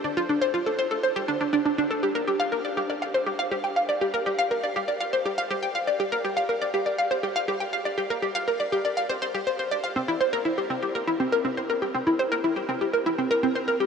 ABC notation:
X:1
M:4/4
L:1/16
Q:1/4=121
K:Gdor
V:1 name="Synth arpeggio sound"
D F D c F A c A c G D D D D D A | G B G f B d G d f c G f G g f d | G B G f B d G d f c G f G g f d | G B G f B d G d f c G f G g f d |
G B G f B d G d f c c G c c d f | C E c B E G C G B E C B C c B G | C E c B E G C G B E C B C c B G |]